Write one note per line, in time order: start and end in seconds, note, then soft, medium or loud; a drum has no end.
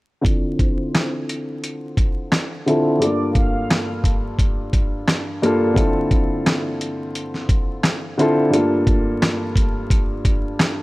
0.21 1.47 D3 medium
0.21 1.48 C4 medium
0.21 1.48 E4 medium
0.21 1.48 F4 medium
0.21 1.49 A4 medium
0.21 kick loud
0.25 0.56 D5 loud
0.25 0.57 D6 medium
0.25 closed hi-hat loud
0.59 1.10 C5 medium
0.59 1.10 C6 medium
0.59 kick loud
0.59 closed hi-hat medium
0.95 cross-stick medium
0.95 snare loud
0.95 closed hi-hat medium
1.29 closed hi-hat medium
1.64 closed hi-hat medium
1.97 kick medium
1.97 closed hi-hat medium
2.32 cross-stick medium
2.32 snare loud
2.32 closed hi-hat loud
2.66 2.97 D3 medium
2.66 2.98 C4 medium
2.66 2.98 E4 medium
2.66 2.98 F4 medium
2.66 2.99 A4 loud
2.66 closed hi-hat medium
2.98 4.24 G2 medium
2.98 3.07 A3 soft
2.98 4.25 D4 medium
2.98 4.25 F4 medium
2.98 4.26 A4 medium
2.98 3.32 D5 loud
2.98 3.32 D6 medium
2.98 closed hi-hat loud
3.06 4.27 A#3 medium
3.35 3.86 F5 medium
3.35 3.86 F6 medium
3.35 kick loud
3.35 closed hi-hat medium
3.70 cross-stick medium
3.70 snare loud
3.70 closed hi-hat medium
4.04 kick medium
4.04 closed hi-hat medium
4.39 kick medium
4.39 closed hi-hat medium
4.73 kick medium
4.73 closed hi-hat medium
5.08 cross-stick medium
5.08 snare loud
5.08 closed hi-hat loud
5.42 5.73 G2 medium
5.42 5.74 A#3 medium
5.42 5.74 D4 medium
5.42 5.74 F4 medium
5.42 5.75 A4 medium
5.42 closed hi-hat medium
5.73 6.99 D3 medium
5.73 6.99 C4 medium
5.73 7.00 E4 medium
5.73 7.00 F4 medium
5.73 7.01 A4 medium
5.73 kick loud
5.77 closed hi-hat loud
6.11 kick loud
6.11 closed hi-hat medium
6.46 cross-stick loud
6.46 snare loud
6.46 closed hi-hat medium
6.81 closed hi-hat medium
7.15 closed hi-hat medium
7.34 snare soft
7.49 kick medium
7.49 closed hi-hat medium
7.83 cross-stick loud
7.83 snare loud
7.83 closed hi-hat loud
8.17 8.49 D3 medium
8.17 8.49 C4 medium
8.17 8.50 E4 medium
8.17 8.50 F4 medium
8.17 8.50 A4 loud
8.17 closed hi-hat medium
8.50 9.75 G2 medium
8.50 8.59 A3 medium
8.50 9.76 D4 medium
8.50 9.77 F4 medium
8.50 9.77 A4 medium
8.50 closed hi-hat loud
8.57 9.79 A#3 medium
8.87 kick loud
8.87 closed hi-hat medium
9.22 cross-stick loud
9.22 snare loud
9.22 closed hi-hat medium
9.56 kick medium
9.56 closed hi-hat medium
9.90 kick medium
9.90 closed hi-hat medium
10.25 kick medium
10.25 closed hi-hat medium
10.59 cross-stick medium
10.59 snare loud
10.59 closed hi-hat loud